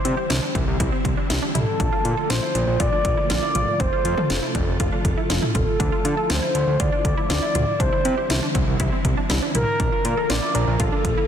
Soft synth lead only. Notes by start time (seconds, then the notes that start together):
Already playing: C5
1.55 A4
2.30 C5
2.79 D5
3.30 D5
3.80 C5
5.55 A4
6.30 C5
6.80 D5
7.30 D5
7.80 C5
9.55 A#4
10.29 D5
10.54 A#4
10.79 A4